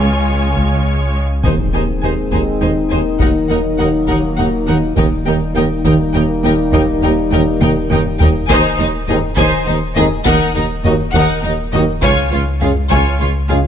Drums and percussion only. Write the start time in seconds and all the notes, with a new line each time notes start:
0.55 taiko
1.43 taiko
2.31 taiko
3.20 taiko
4.08 taiko
4.96 taiko
5.85 taiko
6.73 taiko
7.61 taiko mid
7.91 taiko low-mid
8.20 taiko low
8.50 taiko
9.08 taiko low-mid
9.37 taiko
9.96 taiko low-mid
10.25 taiko
10.84 taiko low-mid
11.14 taiko
11.73 taiko low-mid
12.02 taiko
12.62 taiko low-mid
12.91 taiko
13.50 taiko low-mid